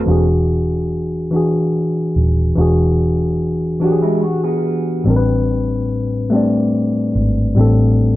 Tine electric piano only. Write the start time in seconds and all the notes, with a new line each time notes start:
0.06 E3 D4 F#4
0.11 G#4
1.31 E3 D4 F#4
1.36 G#4
2.55 E3 D4 F#4
2.61 G#4
3.80 E3 D4 F#4
3.86 G4
3.92 G#4
5.04 A2 G3 C4
5.08 D4 A#4
5.16 B4
6.30 G3 A3 C4
6.34 D4 D5
7.55 A2 G3 C4 D4
7.61 A4